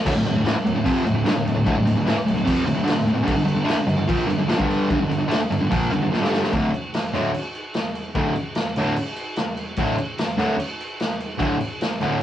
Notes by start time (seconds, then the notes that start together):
0.06 D2 A2, kick, crash
0.16 D2 A2
0.26 D2 A2, crash
0.36 D2 A2
0.45 A2 E3, snare, crash
0.55 muted distorted electric guitar stroke
0.64 D2 A2, crash
0.75 D2 A2
0.84 F2 C3 F3, kick, crash
1.05 D2 A2, crash
1.15 D2 A2
1.24 G2 D3, snare, crash
1.34 D2 A2
1.45 D2 A2, crash
1.55 D2 A2
1.65 D2 A2, kick, crash
1.76 D2 A2
1.85 D2 A2, crash
1.95 D2 A2
2.06 A2 E3, snare, crash
2.16 muted distorted electric guitar stroke
2.25 D2 A2, crash
2.35 D2 A2
2.44 F2 C3 F3, kick, crash
2.66 D2 A2, crash
2.75 D2 A2
2.84 G2 D3, crash
2.89 snare
2.96 D2 A2
3.06 D2 A2, crash
3.14 D2 A2
3.24 G2 D3
3.28 kick, crash
3.35 G2 D3
3.46 G2 D3, crash
3.55 G2 D3
3.65 D3 A3
3.69 snare, crash
3.76 muted distorted electric guitar stroke
3.87 G2 D3, crash
3.97 G2 D3
4.08 A#2 F3 A#3, kick, crash
4.27 G2 D3, crash
4.38 G2 D3
4.48 A#2 F3, snare, crash
4.57 G2 D3 G3, kick
4.71 crash
4.90 G2 D3, kick, crash
5.00 G2 D3
5.10 G2 D3, crash
5.19 G2 D3
5.28 D3 A3, crash
5.32 snare
5.39 muted distorted electric guitar stroke
5.51 G2 D3, crash
5.61 G2 D3
5.70 A#2 F3 A#3, kick, crash
5.92 G2 D3, crash
6.03 G2 D3
6.12 A#2 F3, snare
6.21 G2 D3 G3, snare
6.33 snare
6.44 snare
6.52 D2 A2 D3, kick, crash
6.74 crash
6.94 snare, crash
7.13 D2 A2 D3, crash
7.34 crash
7.55 crash
7.74 snare, crash
7.95 crash
8.15 D2 A2 D3, kick, crash
8.36 crash
8.55 snare, crash
8.76 D2 A2 D3, crash
8.96 crash
9.16 crash
9.36 snare, crash
9.57 crash
9.76 D2 A2 D3, kick, crash
9.98 crash
10.18 snare, crash
10.37 D2 A2 D3, crash
10.60 crash
10.80 crash
11.00 snare, crash
11.21 crash
11.38 D2 A2 D3, kick, crash
11.61 crash
11.81 snare, crash
12.01 D2 A2 D3, crash